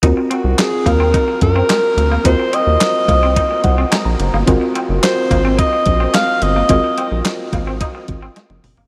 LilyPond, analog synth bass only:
\new Staff \with { instrumentName = "Analog synth bass" } { \clef bass \time 4/4 \key ees \dorian \tempo 4 = 108 ees,16 r8 c,16 r8 ees,8. r16 ges,8 r8 d,8 | ees,16 r8 ees,16 r8 c,8. r16 c,8 r16 bes,,16 ges,,16 g,,16 | aes,,16 r8 ges,,16 r8 aes,,8. r16 bes,,8 r8 g,,8 | aes,,16 r8 bes,,16 r8 aes,,8. r16 aes,,8 r16 ges,,16 ges,,16 g,,16 | }